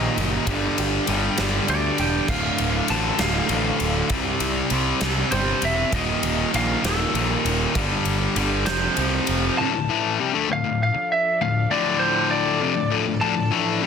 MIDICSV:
0, 0, Header, 1, 8, 480
1, 0, Start_track
1, 0, Tempo, 607287
1, 369, Time_signature, 6, 3, 24, 8
1, 10959, End_track
2, 0, Start_track
2, 0, Title_t, "Lead electric guitar"
2, 0, Program_c, 0, 29
2, 0, Note_on_c, 0, 75, 89
2, 330, Note_off_c, 0, 75, 0
2, 1342, Note_on_c, 0, 74, 69
2, 1578, Note_on_c, 0, 79, 82
2, 1581, Note_off_c, 0, 74, 0
2, 1814, Note_on_c, 0, 77, 86
2, 1819, Note_off_c, 0, 79, 0
2, 2258, Note_off_c, 0, 77, 0
2, 2295, Note_on_c, 0, 81, 99
2, 2532, Note_on_c, 0, 77, 82
2, 2537, Note_off_c, 0, 81, 0
2, 3217, Note_off_c, 0, 77, 0
2, 4208, Note_on_c, 0, 72, 83
2, 4455, Note_off_c, 0, 72, 0
2, 4465, Note_on_c, 0, 76, 89
2, 4680, Note_off_c, 0, 76, 0
2, 4700, Note_on_c, 0, 75, 93
2, 5143, Note_off_c, 0, 75, 0
2, 5182, Note_on_c, 0, 77, 101
2, 5400, Note_off_c, 0, 77, 0
2, 5423, Note_on_c, 0, 69, 78
2, 6106, Note_off_c, 0, 69, 0
2, 6851, Note_on_c, 0, 72, 106
2, 7541, Note_off_c, 0, 72, 0
2, 7574, Note_on_c, 0, 81, 109
2, 8022, Note_off_c, 0, 81, 0
2, 8321, Note_on_c, 0, 77, 92
2, 8551, Note_off_c, 0, 77, 0
2, 8561, Note_on_c, 0, 77, 92
2, 8785, Note_off_c, 0, 77, 0
2, 8788, Note_on_c, 0, 76, 89
2, 9019, Note_off_c, 0, 76, 0
2, 9023, Note_on_c, 0, 77, 100
2, 9253, Note_off_c, 0, 77, 0
2, 9256, Note_on_c, 0, 74, 93
2, 9480, Note_on_c, 0, 72, 86
2, 9501, Note_off_c, 0, 74, 0
2, 9728, Note_on_c, 0, 74, 95
2, 9733, Note_off_c, 0, 72, 0
2, 10237, Note_off_c, 0, 74, 0
2, 10443, Note_on_c, 0, 81, 97
2, 10893, Note_off_c, 0, 81, 0
2, 10959, End_track
3, 0, Start_track
3, 0, Title_t, "String machine"
3, 0, Program_c, 1, 50
3, 7583, Note_on_c, 1, 74, 97
3, 7584, Note_on_c, 1, 62, 79
3, 7585, Note_on_c, 1, 69, 80
3, 7586, Note_on_c, 1, 53, 93
3, 10959, Note_off_c, 1, 53, 0
3, 10959, Note_off_c, 1, 62, 0
3, 10959, Note_off_c, 1, 69, 0
3, 10959, Note_off_c, 1, 74, 0
3, 10959, End_track
4, 0, Start_track
4, 0, Title_t, "Steel-string acoustic guitar"
4, 0, Program_c, 2, 25
4, 0, Note_on_c, 2, 39, 66
4, 0, Note_on_c, 2, 46, 66
4, 0, Note_on_c, 2, 55, 63
4, 0, Note_on_c, 2, 67, 69
4, 131, Note_off_c, 2, 39, 0
4, 133, Note_off_c, 2, 46, 0
4, 143, Note_on_c, 2, 46, 66
4, 372, Note_off_c, 2, 55, 0
4, 373, Note_off_c, 2, 67, 0
4, 376, Note_off_c, 2, 46, 0
4, 380, Note_on_c, 2, 43, 70
4, 625, Note_on_c, 2, 67, 70
4, 853, Note_on_c, 2, 62, 67
4, 1090, Note_on_c, 2, 55, 68
4, 1320, Note_off_c, 2, 62, 0
4, 1330, Note_on_c, 2, 62, 61
4, 1566, Note_off_c, 2, 55, 0
4, 1571, Note_off_c, 2, 43, 0
4, 1575, Note_on_c, 2, 55, 66
4, 1807, Note_off_c, 2, 62, 0
4, 1810, Note_off_c, 2, 55, 0
4, 1814, Note_off_c, 2, 67, 0
4, 10959, End_track
5, 0, Start_track
5, 0, Title_t, "Distorted electric guitar"
5, 0, Program_c, 3, 30
5, 0, Note_on_c, 3, 39, 86
5, 0, Note_on_c, 3, 46, 81
5, 0, Note_on_c, 3, 51, 96
5, 355, Note_off_c, 3, 39, 0
5, 360, Note_off_c, 3, 46, 0
5, 360, Note_off_c, 3, 51, 0
5, 377, Note_on_c, 3, 43, 86
5, 380, Note_on_c, 3, 50, 96
5, 384, Note_on_c, 3, 55, 96
5, 843, Note_off_c, 3, 43, 0
5, 850, Note_off_c, 3, 50, 0
5, 852, Note_off_c, 3, 55, 0
5, 853, Note_on_c, 3, 43, 80
5, 859, Note_on_c, 3, 50, 75
5, 862, Note_on_c, 3, 55, 88
5, 1085, Note_off_c, 3, 43, 0
5, 1091, Note_off_c, 3, 50, 0
5, 1092, Note_off_c, 3, 55, 0
5, 1095, Note_on_c, 3, 43, 94
5, 1100, Note_on_c, 3, 50, 91
5, 1102, Note_on_c, 3, 55, 99
5, 1322, Note_off_c, 3, 43, 0
5, 1327, Note_off_c, 3, 50, 0
5, 1330, Note_off_c, 3, 55, 0
5, 1332, Note_on_c, 3, 43, 79
5, 1336, Note_on_c, 3, 50, 80
5, 1340, Note_on_c, 3, 55, 82
5, 1794, Note_off_c, 3, 43, 0
5, 1796, Note_off_c, 3, 50, 0
5, 1798, Note_off_c, 3, 55, 0
5, 1810, Note_on_c, 3, 38, 88
5, 1818, Note_on_c, 3, 45, 88
5, 1818, Note_on_c, 3, 50, 99
5, 2284, Note_off_c, 3, 38, 0
5, 2284, Note_off_c, 3, 45, 0
5, 2290, Note_off_c, 3, 50, 0
5, 2294, Note_on_c, 3, 38, 73
5, 2294, Note_on_c, 3, 45, 88
5, 2299, Note_on_c, 3, 50, 90
5, 2522, Note_off_c, 3, 38, 0
5, 2526, Note_off_c, 3, 45, 0
5, 2531, Note_on_c, 3, 38, 95
5, 2532, Note_off_c, 3, 50, 0
5, 2536, Note_on_c, 3, 45, 101
5, 2541, Note_on_c, 3, 50, 108
5, 2762, Note_off_c, 3, 38, 0
5, 2762, Note_off_c, 3, 45, 0
5, 2768, Note_off_c, 3, 50, 0
5, 2771, Note_on_c, 3, 38, 87
5, 2772, Note_on_c, 3, 45, 78
5, 2777, Note_on_c, 3, 50, 83
5, 3234, Note_off_c, 3, 38, 0
5, 3234, Note_off_c, 3, 45, 0
5, 3237, Note_off_c, 3, 50, 0
5, 3250, Note_on_c, 3, 48, 85
5, 3251, Note_on_c, 3, 55, 101
5, 3259, Note_on_c, 3, 60, 106
5, 3721, Note_off_c, 3, 48, 0
5, 3728, Note_off_c, 3, 60, 0
5, 3730, Note_off_c, 3, 55, 0
5, 3731, Note_on_c, 3, 48, 74
5, 3733, Note_on_c, 3, 55, 80
5, 3738, Note_on_c, 3, 60, 92
5, 3952, Note_off_c, 3, 48, 0
5, 3962, Note_off_c, 3, 60, 0
5, 3962, Note_on_c, 3, 48, 97
5, 3964, Note_off_c, 3, 55, 0
5, 3967, Note_on_c, 3, 55, 105
5, 3972, Note_on_c, 3, 60, 102
5, 4195, Note_off_c, 3, 48, 0
5, 4202, Note_off_c, 3, 60, 0
5, 4204, Note_off_c, 3, 55, 0
5, 4204, Note_on_c, 3, 48, 78
5, 4207, Note_on_c, 3, 55, 80
5, 4212, Note_on_c, 3, 60, 97
5, 4672, Note_off_c, 3, 48, 0
5, 4676, Note_off_c, 3, 60, 0
5, 4685, Note_off_c, 3, 55, 0
5, 4687, Note_on_c, 3, 39, 90
5, 4688, Note_on_c, 3, 46, 95
5, 4696, Note_on_c, 3, 51, 110
5, 5156, Note_off_c, 3, 39, 0
5, 5162, Note_off_c, 3, 46, 0
5, 5164, Note_off_c, 3, 51, 0
5, 5166, Note_on_c, 3, 39, 78
5, 5172, Note_on_c, 3, 46, 88
5, 5174, Note_on_c, 3, 51, 85
5, 5393, Note_off_c, 3, 39, 0
5, 5402, Note_off_c, 3, 46, 0
5, 5403, Note_off_c, 3, 51, 0
5, 5403, Note_on_c, 3, 39, 94
5, 5411, Note_on_c, 3, 46, 103
5, 5413, Note_on_c, 3, 51, 107
5, 5641, Note_off_c, 3, 39, 0
5, 5649, Note_off_c, 3, 46, 0
5, 5650, Note_off_c, 3, 51, 0
5, 5650, Note_on_c, 3, 39, 80
5, 5658, Note_on_c, 3, 46, 83
5, 5659, Note_on_c, 3, 51, 99
5, 6117, Note_off_c, 3, 39, 0
5, 6121, Note_off_c, 3, 46, 0
5, 6121, Note_off_c, 3, 51, 0
5, 6129, Note_on_c, 3, 43, 99
5, 6130, Note_on_c, 3, 50, 97
5, 6138, Note_on_c, 3, 55, 104
5, 6601, Note_off_c, 3, 43, 0
5, 6606, Note_off_c, 3, 50, 0
5, 6611, Note_on_c, 3, 43, 75
5, 6614, Note_off_c, 3, 55, 0
5, 6615, Note_on_c, 3, 50, 95
5, 6623, Note_on_c, 3, 55, 85
5, 6837, Note_off_c, 3, 43, 0
5, 6840, Note_off_c, 3, 50, 0
5, 6844, Note_off_c, 3, 55, 0
5, 6848, Note_on_c, 3, 41, 100
5, 6855, Note_on_c, 3, 48, 93
5, 6859, Note_on_c, 3, 53, 97
5, 7082, Note_off_c, 3, 41, 0
5, 7089, Note_off_c, 3, 53, 0
5, 7090, Note_off_c, 3, 48, 0
5, 7092, Note_on_c, 3, 41, 77
5, 7098, Note_on_c, 3, 53, 95
5, 7100, Note_on_c, 3, 48, 81
5, 7558, Note_off_c, 3, 41, 0
5, 7562, Note_off_c, 3, 48, 0
5, 7562, Note_off_c, 3, 53, 0
5, 7585, Note_on_c, 3, 38, 107
5, 7590, Note_on_c, 3, 45, 101
5, 7692, Note_off_c, 3, 38, 0
5, 7695, Note_off_c, 3, 45, 0
5, 7701, Note_on_c, 3, 38, 70
5, 7703, Note_on_c, 3, 45, 67
5, 7808, Note_off_c, 3, 45, 0
5, 7814, Note_off_c, 3, 38, 0
5, 7817, Note_on_c, 3, 45, 90
5, 7823, Note_on_c, 3, 52, 116
5, 7824, Note_on_c, 3, 57, 121
5, 8048, Note_off_c, 3, 45, 0
5, 8051, Note_off_c, 3, 52, 0
5, 8052, Note_off_c, 3, 57, 0
5, 8055, Note_on_c, 3, 48, 84
5, 8064, Note_on_c, 3, 55, 98
5, 8166, Note_off_c, 3, 55, 0
5, 8167, Note_off_c, 3, 48, 0
5, 8170, Note_on_c, 3, 50, 95
5, 8175, Note_on_c, 3, 57, 106
5, 8285, Note_off_c, 3, 50, 0
5, 8287, Note_off_c, 3, 57, 0
5, 8297, Note_on_c, 3, 38, 69
5, 8300, Note_on_c, 3, 45, 75
5, 8401, Note_off_c, 3, 38, 0
5, 8405, Note_off_c, 3, 45, 0
5, 8411, Note_on_c, 3, 38, 77
5, 8415, Note_on_c, 3, 45, 78
5, 8604, Note_off_c, 3, 38, 0
5, 8606, Note_off_c, 3, 45, 0
5, 9019, Note_on_c, 3, 38, 69
5, 9020, Note_on_c, 3, 45, 78
5, 9208, Note_off_c, 3, 38, 0
5, 9208, Note_off_c, 3, 45, 0
5, 9252, Note_on_c, 3, 38, 100
5, 9253, Note_on_c, 3, 45, 115
5, 9261, Note_on_c, 3, 50, 118
5, 9963, Note_off_c, 3, 38, 0
5, 9964, Note_off_c, 3, 45, 0
5, 9967, Note_on_c, 3, 41, 96
5, 9969, Note_off_c, 3, 50, 0
5, 9973, Note_on_c, 3, 48, 109
5, 10082, Note_off_c, 3, 41, 0
5, 10085, Note_off_c, 3, 48, 0
5, 10089, Note_on_c, 3, 38, 74
5, 10090, Note_on_c, 3, 45, 73
5, 10191, Note_off_c, 3, 38, 0
5, 10198, Note_off_c, 3, 45, 0
5, 10200, Note_on_c, 3, 38, 93
5, 10208, Note_on_c, 3, 45, 112
5, 10317, Note_off_c, 3, 38, 0
5, 10320, Note_off_c, 3, 45, 0
5, 10326, Note_on_c, 3, 38, 69
5, 10329, Note_on_c, 3, 45, 86
5, 10427, Note_off_c, 3, 38, 0
5, 10435, Note_off_c, 3, 45, 0
5, 10437, Note_on_c, 3, 38, 93
5, 10444, Note_on_c, 3, 45, 115
5, 10549, Note_off_c, 3, 38, 0
5, 10550, Note_off_c, 3, 45, 0
5, 10558, Note_on_c, 3, 38, 65
5, 10559, Note_on_c, 3, 45, 78
5, 10668, Note_off_c, 3, 45, 0
5, 10675, Note_off_c, 3, 38, 0
5, 10678, Note_on_c, 3, 45, 107
5, 10682, Note_on_c, 3, 52, 104
5, 10684, Note_on_c, 3, 57, 114
5, 10916, Note_off_c, 3, 45, 0
5, 10918, Note_off_c, 3, 52, 0
5, 10919, Note_off_c, 3, 57, 0
5, 10922, Note_on_c, 3, 48, 86
5, 10927, Note_on_c, 3, 55, 106
5, 10959, Note_off_c, 3, 48, 0
5, 10959, Note_off_c, 3, 55, 0
5, 10959, End_track
6, 0, Start_track
6, 0, Title_t, "Picked electric bass"
6, 0, Program_c, 4, 34
6, 137, Note_on_c, 4, 30, 84
6, 294, Note_off_c, 4, 30, 0
6, 369, Note_on_c, 4, 31, 91
6, 529, Note_off_c, 4, 31, 0
6, 619, Note_on_c, 4, 31, 80
6, 776, Note_off_c, 4, 31, 0
6, 855, Note_on_c, 4, 31, 86
6, 1013, Note_off_c, 4, 31, 0
6, 1098, Note_on_c, 4, 31, 83
6, 1254, Note_off_c, 4, 31, 0
6, 1333, Note_on_c, 4, 38, 84
6, 1491, Note_off_c, 4, 38, 0
6, 1574, Note_on_c, 4, 28, 82
6, 1731, Note_off_c, 4, 28, 0
6, 1805, Note_on_c, 4, 26, 88
6, 1966, Note_off_c, 4, 26, 0
6, 2051, Note_on_c, 4, 26, 80
6, 2209, Note_off_c, 4, 26, 0
6, 2292, Note_on_c, 4, 33, 87
6, 2450, Note_off_c, 4, 33, 0
6, 2523, Note_on_c, 4, 26, 89
6, 2685, Note_off_c, 4, 26, 0
6, 2763, Note_on_c, 4, 33, 84
6, 2925, Note_off_c, 4, 33, 0
6, 3009, Note_on_c, 4, 26, 82
6, 3168, Note_off_c, 4, 26, 0
6, 3240, Note_on_c, 4, 36, 93
6, 3403, Note_off_c, 4, 36, 0
6, 3481, Note_on_c, 4, 36, 82
6, 3644, Note_off_c, 4, 36, 0
6, 3722, Note_on_c, 4, 36, 91
6, 3884, Note_off_c, 4, 36, 0
6, 3962, Note_on_c, 4, 36, 88
6, 4125, Note_off_c, 4, 36, 0
6, 4205, Note_on_c, 4, 31, 88
6, 4366, Note_off_c, 4, 31, 0
6, 4448, Note_on_c, 4, 28, 85
6, 4609, Note_off_c, 4, 28, 0
6, 4682, Note_on_c, 4, 27, 92
6, 4845, Note_off_c, 4, 27, 0
6, 4926, Note_on_c, 4, 27, 80
6, 5087, Note_off_c, 4, 27, 0
6, 5172, Note_on_c, 4, 34, 97
6, 5332, Note_off_c, 4, 34, 0
6, 5407, Note_on_c, 4, 27, 90
6, 5569, Note_off_c, 4, 27, 0
6, 5645, Note_on_c, 4, 34, 86
6, 5808, Note_off_c, 4, 34, 0
6, 5886, Note_on_c, 4, 27, 91
6, 6049, Note_off_c, 4, 27, 0
6, 6130, Note_on_c, 4, 31, 100
6, 6291, Note_off_c, 4, 31, 0
6, 6367, Note_on_c, 4, 31, 90
6, 6529, Note_off_c, 4, 31, 0
6, 6607, Note_on_c, 4, 31, 91
6, 6847, Note_off_c, 4, 31, 0
6, 6847, Note_on_c, 4, 29, 91
6, 7010, Note_off_c, 4, 29, 0
6, 7094, Note_on_c, 4, 36, 83
6, 7254, Note_off_c, 4, 36, 0
6, 7342, Note_on_c, 4, 29, 91
6, 7499, Note_off_c, 4, 29, 0
6, 10959, End_track
7, 0, Start_track
7, 0, Title_t, "Muted distorted electric guitar strokes"
7, 8651, Note_on_c, 9, 29, 61
7, 8730, Note_off_c, 9, 29, 0
7, 10959, End_track
8, 0, Start_track
8, 0, Title_t, "Drums"
8, 140, Note_on_c, 9, 51, 69
8, 219, Note_off_c, 9, 51, 0
8, 371, Note_on_c, 9, 51, 96
8, 372, Note_on_c, 9, 36, 97
8, 450, Note_off_c, 9, 51, 0
8, 451, Note_off_c, 9, 36, 0
8, 616, Note_on_c, 9, 51, 72
8, 695, Note_off_c, 9, 51, 0
8, 848, Note_on_c, 9, 51, 73
8, 927, Note_off_c, 9, 51, 0
8, 1088, Note_on_c, 9, 51, 91
8, 1092, Note_on_c, 9, 38, 104
8, 1167, Note_off_c, 9, 51, 0
8, 1171, Note_off_c, 9, 38, 0
8, 1330, Note_on_c, 9, 51, 66
8, 1410, Note_off_c, 9, 51, 0
8, 1566, Note_on_c, 9, 51, 65
8, 1645, Note_off_c, 9, 51, 0
8, 1804, Note_on_c, 9, 49, 84
8, 1805, Note_on_c, 9, 36, 101
8, 1883, Note_off_c, 9, 49, 0
8, 1884, Note_off_c, 9, 36, 0
8, 2042, Note_on_c, 9, 51, 67
8, 2121, Note_off_c, 9, 51, 0
8, 2278, Note_on_c, 9, 51, 69
8, 2357, Note_off_c, 9, 51, 0
8, 2519, Note_on_c, 9, 51, 89
8, 2523, Note_on_c, 9, 38, 106
8, 2598, Note_off_c, 9, 51, 0
8, 2602, Note_off_c, 9, 38, 0
8, 2759, Note_on_c, 9, 51, 65
8, 2838, Note_off_c, 9, 51, 0
8, 3003, Note_on_c, 9, 51, 67
8, 3082, Note_off_c, 9, 51, 0
8, 3237, Note_on_c, 9, 51, 88
8, 3242, Note_on_c, 9, 36, 108
8, 3316, Note_off_c, 9, 51, 0
8, 3321, Note_off_c, 9, 36, 0
8, 3480, Note_on_c, 9, 51, 73
8, 3559, Note_off_c, 9, 51, 0
8, 3716, Note_on_c, 9, 51, 71
8, 3795, Note_off_c, 9, 51, 0
8, 3958, Note_on_c, 9, 51, 91
8, 3963, Note_on_c, 9, 38, 115
8, 4037, Note_off_c, 9, 51, 0
8, 4042, Note_off_c, 9, 38, 0
8, 4202, Note_on_c, 9, 51, 72
8, 4281, Note_off_c, 9, 51, 0
8, 4441, Note_on_c, 9, 51, 70
8, 4520, Note_off_c, 9, 51, 0
8, 4683, Note_on_c, 9, 36, 106
8, 4683, Note_on_c, 9, 51, 94
8, 4762, Note_off_c, 9, 36, 0
8, 4762, Note_off_c, 9, 51, 0
8, 4924, Note_on_c, 9, 51, 74
8, 5003, Note_off_c, 9, 51, 0
8, 5170, Note_on_c, 9, 51, 70
8, 5249, Note_off_c, 9, 51, 0
8, 5410, Note_on_c, 9, 51, 96
8, 5415, Note_on_c, 9, 38, 113
8, 5489, Note_off_c, 9, 51, 0
8, 5494, Note_off_c, 9, 38, 0
8, 5653, Note_on_c, 9, 51, 64
8, 5732, Note_off_c, 9, 51, 0
8, 5893, Note_on_c, 9, 51, 65
8, 5972, Note_off_c, 9, 51, 0
8, 6128, Note_on_c, 9, 36, 104
8, 6128, Note_on_c, 9, 51, 91
8, 6207, Note_off_c, 9, 36, 0
8, 6207, Note_off_c, 9, 51, 0
8, 6366, Note_on_c, 9, 51, 74
8, 6445, Note_off_c, 9, 51, 0
8, 6609, Note_on_c, 9, 51, 69
8, 6688, Note_off_c, 9, 51, 0
8, 6846, Note_on_c, 9, 51, 90
8, 6851, Note_on_c, 9, 38, 115
8, 6925, Note_off_c, 9, 51, 0
8, 6930, Note_off_c, 9, 38, 0
8, 7088, Note_on_c, 9, 51, 65
8, 7167, Note_off_c, 9, 51, 0
8, 7326, Note_on_c, 9, 51, 69
8, 7406, Note_off_c, 9, 51, 0
8, 10959, End_track
0, 0, End_of_file